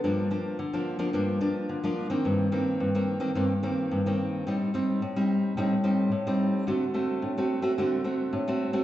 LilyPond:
\new Staff \with { instrumentName = "Nylon-string guitar" } { \time 4/4 \key g \minor \tempo 4 = 108 << { <f bes d'>8 <f bes d'>8 r16 <f bes d'>8 <f bes d'>16 <f bes d'>8 <f bes d'>8. <f bes d'>8 <ees bes c'>16~ | <ees bes c'>8 <ees bes c'>8. <ees bes c'>8 <ees bes c'>16 <ees bes c'>16 r16 <ees bes c'>8. <ees bes c'>8. | <g c' ees'>8 <g c' ees'>8 r16 <g c' ees'>8. <g c' ees'>16 r16 <g c' ees'>8 r16 <g c' ees'>8. | <a c' fis'>16 r16 <a c' fis'>8. <a c' fis'>8 <a c' fis'>16 <a c' fis'>8 <a c' fis'>8. <a c' fis'>8 <a c' fis'>16 | } \\ { g,4 d4 g,4 d4 | g,4 g,4 g,4 g,4 | a,4 a,4 a,4 a,4 | d4 a,4 d4 a,4 | } >> }